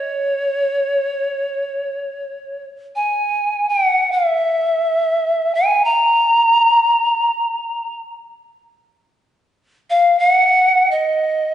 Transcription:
X:1
M:4/4
L:1/8
Q:"Swing" 1/4=83
K:C#dor
V:1 name="Pan flute"
c6- c z | g2 f e4 g | a6 z2 | [K:D#m] z3 e f2 d2 |]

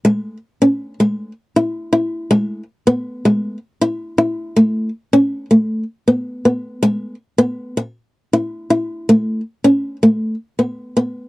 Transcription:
X:1
M:12/8
L:1/8
Q:3/8=106
K:E
V:1 name="Nylon-string guitar"
G,2 z C2 G,2 z E2 E2 | G,2 z B,2 G,2 z E2 E2 | A,2 z C2 A,2 z B,2 B,2 | G,2 z B,2 z3 E2 E2 |
A,2 z C2 A,2 z B,2 B,2 |]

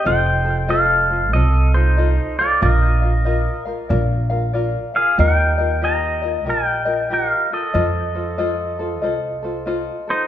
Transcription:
X:1
M:4/4
L:1/8
Q:"Swing" 1/4=94
K:Fdor
V:1 name="Pedal steel guitar"
[cg]2 [=Af]2 [Ae] [Ec]2 [Fd] | [Be]3 z4 [Af] | [Bg]2 [eb]2 [Bg]2 [Bf] [=Ae]- | [=Ae]3 z4 [Ec] |]
V:2 name="Ukulele"
[F=Ace] [FAc] [FAce] [FAc] [FAce] [FAc] [FAce] [FAc] | [FBef] [FBf] [FBef] [FBf] [FBdf] [FBf] [FBdf] [FBf] | [FGBe] [FBe] [FGBe] [FBe] [FGBe] [FBe] [FGBe] [Fe] | [F=Ace] [FAc] [FAce] [FAc] [FAce] [FAc] [FAce] [FAc] |]
V:3 name="Upright bass" clef=bass
F,,,4 C,,4 | B,,,4 B,,,4 | E,,4 B,,,4 | F,,4 C,,4 |]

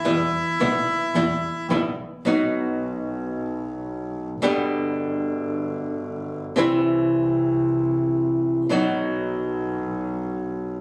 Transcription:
X:1
M:4/4
L:1/8
Q:1/4=111
K:Bphr
V:1 name="Bandoneon"
[Ee]6 z2 | z8 | z8 | z8 |
z8 |]
V:2 name="Nylon-string guitar" clef=bass
[B,,E,G,B,E] z [B,,E,G,B,E] z [B,,E,G,B,E] z [B,,E,G,B,E] z | [B,,F,B,^DF]8 | [B,,D,G,B,G]8 | [C,E,G,CE]8 |
[B,,F,B,^DF]8 |]
V:3 name="Double bass" clef=bass
E,, z B,,, z E,, z B,,, z | B,,,8 | G,,,8 | C,,8 |
B,,,8 |]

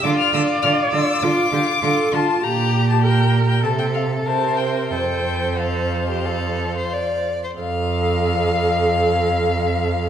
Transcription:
X:1
M:4/4
L:1/16
Q:1/4=94
K:F
V:1 name="Violin"
d' f' e'2 f'2 e'2 d'6 a2 | b3 a g3 g a g f2 a2 g2 | g4 f8- f2 z2 | f16 |]
V:2 name="Viola"
d8 F2 G2 A2 F2 | G4 B4 A4 c4 | c12- c2 z2 | A16 |]
V:3 name="Violin"
F2 F2 F2 F2 F2 F2 F2 F2 | G4 G4 A4 B4 | A4 A3 G A3 c d3 c | f16 |]
V:4 name="Cello" clef=bass
D,2 D,2 D,2 D,2 D,2 D,2 D,2 D,2 | B,,8 C,4 C,4 | F,,12- F,,2 z2 | F,,16 |]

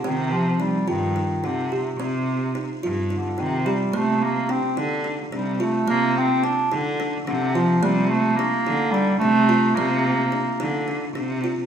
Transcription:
X:1
M:7/8
L:1/8
Q:1/4=108
K:Cdor
V:1 name="Kalimba"
C2 E F E E G | C2 E F E E G | B,2 D E D D F | B,2 D E D D F |
B,2 D E D D F | B,2 D E D D F |]
V:2 name="Bass clarinet" clef=bass
E, F, G, E,2 D, C, | C,3 z D, E, G, | A, B, C z2 G, A, | B, C D z2 D, F, |
G, A, B,2 G, A,2 | B,4- B, z2 |]
V:3 name="Cello" clef=bass
C,3 G,,2 C,2 | C,3 G,,2 C,2 | C,3 D,2 C,2 | C,3 D,2 C,2 |
C,3 D,2 C,2 | C,3 D,2 C,2 |]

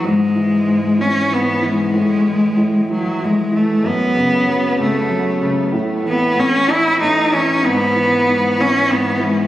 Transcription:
X:1
M:6/8
L:1/8
Q:3/8=63
K:E
V:1 name="Cello"
G,3 C B, G,- | G,3 F, G, A, | B,3 A,2 z | z B, C E D C |
B,3 C B, G, |]
V:2 name="Grand piano" clef=bass
G,, E, G,, E, G,, E, | A,, E, A,, E, A,, E, | F,, C, F, C, F, C, | A,, E, A,, E, A,, E, |
G,, E, G,, E, G,, E, |]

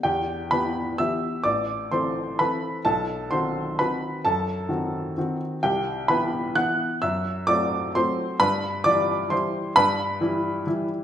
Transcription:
X:1
M:3/4
L:1/8
Q:1/4=130
K:Em
V:1 name="Upright piano"
[Gg]2 [Bb]2 [ee']2 | [dd']2 [cc']2 [Bb]2 | [Aa]2 [cc']2 [Bb]2 | [Aa]4- [Aa] z |
[Gg]2 [Bb]2 [ff']2 | [ee']2 [dd']2 [cc']2 | [Bb]2 [dd']2 [cc']2 | [Bb]4- [Bb] z |]
V:2 name="Upright piano" clef=bass
E,,2 [E,B,G]2 [E,B,G]2 | A,,,2 [E,CA]2 [E,CA]2 | B,,,2 [^D,CF]2 [D,CF]2 | F,,2 [^D,CF]2 [D,CF]2 |
C,,2 [E,B,E]2 [E,B,E]2 | F,,2 [F,A,C]2 [F,A,C]2 | G,,2 [E,G,E]2 [E,G,E]2 | G,,2 [E,G,E]2 [E,G,E]2 |]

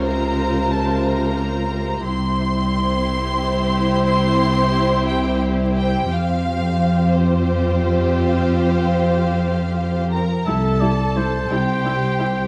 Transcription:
X:1
M:6/8
L:1/8
Q:3/8=59
K:Cmix
V:1 name="Violin section"
b2 a b3 | c'6 | c'3 g z g | f3 c3 |
f4- f b | a3 g3 |]
V:2 name="Oboe"
z6 | z6 | z6 | z6 |
z6 | e d c4 |]
V:3 name="Violin section"
[Bc]6 | [Gc]6- | [Gc]6 | [Gc]6- |
[Gc]4- [Gc] B | A3 G3 |]
V:4 name="Viola section"
[C,F]6 | [CE]6- | [CE]6 | [CF]6- |
[CF]4- [CF] z | [G,E] [G,E] [G,E] [G,E] [G,E] [G,E] |]
V:5 name="Cello section" clef=bass
_D,,6 | C,,6- | C,,6 | F,,6- |
F,,4- F,, z | C,,3 C,,3 |]
V:6 name="Double bass section" clef=bass
z6 | z6 | z6 | z6 |
z6 | C,,3 C,,3 |]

